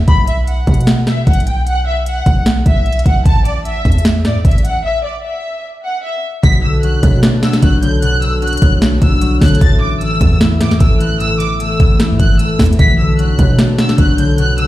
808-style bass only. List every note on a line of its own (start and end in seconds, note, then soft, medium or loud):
0.08 0.65 B1 loud
0.67 1.25 B2 loud
1.27 2.22 B1 loud
2.26 2.64 B1 loud
2.66 3.04 B1 loud
3.06 3.25 B1 loud
3.26 3.83 A1 loud
3.85 4.26 E2 loud
4.25 4.37 A2 loud
4.36 4.44 E2 loud
4.45 4.83 A1 loud
6.43 7.01 B1 loud
7.03 7.60 B2 loud
7.63 8.58 B1 loud
8.62 9.00 B1 loud
9.02 9.40 B1 loud
9.41 9.61 B1 loud
9.61 10.19 A1 loud
10.21 10.62 E2 loud
10.61 10.73 A2 loud
10.71 10.80 E2 loud
10.81 11.76 A1 loud
11.80 12.12 A1 loud
12.10 12.19 A2 loud
12.20 12.39 G1 loud
12.59 12.78 E2 loud
12.79 13.36 B1 loud
13.39 13.96 B2 loud
13.98 14.67 B1 loud